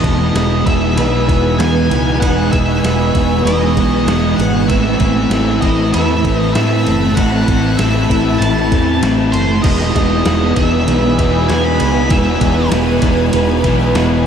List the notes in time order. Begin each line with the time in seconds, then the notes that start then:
Already playing: E2 E3 G#3 B3 D#4 B4 D#5 G#5 D#6
0.03 E1 B2 E3 G#3, kick, ride
0.34 E1 E2 B2 E3 G#3 B3 D#4 B4, snare, ride
0.65 E1 B3 D#4 B4 E5, kick, ride
0.96 B1 E3 G#3 B3 D#4 B4, ride
1.28 E1 B2 E3 B3, kick, ride
1.58 E2 B2 E3 G#3 B3 D#4 B4 G#5, snare, ride
1.90 C#2 B2 E3 B3, ride
2.20 E1 E2 B2 E3 G#3 B3 D#4 B4 F#5 C#6, kick, ride
2.52 E1 B2 E3 G#3 E5, kick, ride
2.82 E1 E2 B2 G#3 B3 D#4 B4, snare, ride
2.87 E3
3.13 E1 B3 D#4 B4, kick, ride
3.44 E1 E3 G#3 B3 D#4 B4 D#5, ride
3.77 B1 B2 E3 B3, kick, ride
4.07 E1 E2 B2 E3 G#3 B3 D#4 B4, snare, ride
4.37 G#1 E3 B3 F#5, ride
4.42 B2
4.68 A1 A2 E3 A3 C4 E4 B4 E5 A5 B5, kick, ride
4.72 A3
5.00 A1 E3 A3 C4, kick, ride
5.30 A1 A2 E3 A3 C4 E4 B4, snare, ride
5.35 A3
5.61 A1 A3 C4 E4 B4 D#5, kick, ride
5.92 E2 A2 E3 A3 C4 E4 B4 E5, ride
6.25 A1 A3 C4, kick, ride
6.29 E3
6.38 D#5
6.54 A2 A3 C4 E4 B4 E5, snare, ride
6.58 E3 A3
6.87 F#1 E3 A3 C4, ride
7.15 A1 A2 E3 A3 C4 E4 B4 F#5, kick, ride
7.20 E3 A3
7.48 A1 E3 A3 C4, kick, ride
7.77 A1 A2 A3 C4 E4 B4 E5, snare, ride
7.81 E3 A3
8.09 A1 A3 C4 E4 B4, kick, ride
8.38 A1 A2 E3 A3 C4 E4 B4 A5, ride
8.72 E2 E3 A3 C4, kick, ride
9.02 A1 A2 E3 A3 C4 E4 B4, snare, ride
9.07 A3
9.32 F#1 A3 C4 C5, ride
9.37 E3
9.62 E1 E2 E3 G#3 B3 D#4 B4 D#5 G#5 D#6, kick, crash
9.67 B2 E3
9.95 E1 B2 E3 G#3, kick, ride
10.24 E1 E2 B2 G#3 B3 D#4 B4, snare, ride
10.30 E3
10.56 E1 B3 D#4 B4 E5, kick, ride
10.87 B1 E3 G#3 B3 D#4 B4, ride
11.19 E1 E2 B2 E3 B3, kick, ride
11.48 E2 B2 G#3 B3 D#4 B4 G#5, snare, ride
11.53 E3
11.65 B5
11.80 C#2 B2 E3 B3, ride
12.10 E1 E2 B2 E3 G#3 B3 D#4 B4 E5, kick, ride
12.14 E3
12.41 E1 B2 E3 G#3, kick, ride
12.71 E1 E2 B2 G#3 B3 D#4 B4, snare, ride
12.76 E3
13.02 E1 B3 D#4 B4, kick, ride
13.33 E1 E3 G#3 B3 D#4 B4, ride
13.64 B1 E2 B2 E3 B3, kick, ride
13.94 E1 E2 B2 G#3 B3 D#4 B4, snare, ride
13.99 E3